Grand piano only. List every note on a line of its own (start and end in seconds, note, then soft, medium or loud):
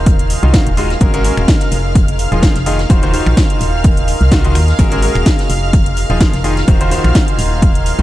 0.00 0.40 D#3 medium
0.00 0.40 D#4 medium
0.00 0.40 F4 medium
0.00 0.40 F#4 medium
0.00 0.40 C5 medium
0.43 0.52 D#3 medium
0.43 0.52 D#4 medium
0.43 0.52 F4 medium
0.43 0.52 F#4 medium
0.43 0.52 D#5 medium
0.54 0.65 D#3 medium
0.54 0.65 D#4 medium
0.54 0.65 F4 medium
0.54 0.65 F#4 medium
0.54 0.65 F5 medium
0.77 0.89 G#3 medium
0.77 0.89 D#4 medium
0.77 0.89 F4 medium
0.77 0.89 F#4 medium
0.77 0.89 D#5 medium
1.01 1.12 G#3 medium
1.01 1.12 C#4 medium
1.01 1.12 F#4 medium
1.01 1.12 G#4 medium
1.01 1.12 A#4 medium
1.14 1.22 G#3 loud
1.14 1.22 C#4 medium
1.14 1.22 F#4 medium
1.14 1.22 G#4 medium
1.14 1.22 A#4 loud
1.24 1.70 G#3 medium
1.24 1.70 C#4 medium
1.24 1.70 F#4 medium
1.24 1.70 G#4 medium
1.24 1.70 A#4 medium
2.32 2.41 F3 medium
2.32 2.41 D#4 medium
2.32 2.41 F4 medium
2.32 2.41 G#4 medium
2.32 2.41 D#5 medium
2.43 2.54 F3 medium
2.43 2.54 D#4 medium
2.43 2.54 F4 medium
2.43 2.54 G#4 medium
2.43 2.54 F5 medium
2.66 2.78 D#3 medium
2.66 2.78 D#4 medium
2.66 2.78 F4 medium
2.66 2.78 G#4 medium
2.66 2.78 D#5 medium
2.90 3.01 D#3 medium
2.90 3.01 D#4 medium
2.90 3.01 F4 medium
2.90 3.01 F#4 medium
2.90 3.01 C5 medium
3.03 3.11 D#3 loud
3.03 3.11 D#4 medium
3.03 3.11 F4 medium
3.03 3.11 F#4 medium
3.03 3.11 C5 loud
3.13 4.18 D#3 medium
3.13 4.18 D#4 medium
3.13 4.18 F4 medium
3.13 4.18 F#4 medium
3.13 4.18 C5 medium
4.32 4.43 D#3 medium
4.32 4.43 D#4 medium
4.32 4.43 F4 medium
4.32 4.43 F#4 medium
4.32 4.43 D#5 loud
4.45 4.54 D#3 medium
4.45 4.54 D#4 medium
4.45 4.54 F4 medium
4.45 4.54 F#4 medium
4.45 4.54 D#5 loud
4.79 4.90 G#3 medium
4.79 4.90 C#4 medium
4.79 4.90 F#4 medium
4.79 4.90 G#4 medium
4.79 4.90 A#4 medium
4.92 5.00 G#3 loud
4.92 5.00 C#4 medium
4.92 5.00 F#4 medium
4.92 5.00 G#4 medium
4.92 5.00 A#4 loud
5.03 5.48 G#3 medium
5.03 5.48 C#4 medium
5.03 5.48 F#4 medium
5.03 5.48 G#4 medium
5.03 5.48 A#4 medium
6.10 6.19 F3 medium
6.10 6.19 D#4 medium
6.10 6.19 F4 medium
6.10 6.19 G#4 medium
6.10 6.19 D#5 medium
6.21 6.32 F3 medium
6.21 6.32 D#4 medium
6.21 6.32 F4 medium
6.21 6.32 G#4 medium
6.21 6.32 F5 medium
6.44 6.56 D#3 medium
6.44 6.56 D#4 medium
6.44 6.56 F4 medium
6.44 6.56 G#4 medium
6.44 6.56 D#5 loud
6.68 6.79 D#3 medium
6.68 6.79 D#4 medium
6.68 6.79 F4 medium
6.68 6.79 F#4 medium
6.68 6.79 C5 loud
6.81 6.89 D#3 loud
6.81 6.89 D#4 medium
6.81 6.89 F4 medium
6.81 6.89 F#4 medium
6.81 6.89 C5 loud
6.91 7.96 D#3 medium
6.91 7.96 D#4 medium
6.91 7.96 F4 medium
6.91 7.96 F#4 medium
6.91 7.96 C5 medium
7.99 8.02 D#3 medium
7.99 8.02 D#4 medium
7.99 8.02 F4 medium
7.99 8.02 F#4 medium
7.99 8.02 D#5 medium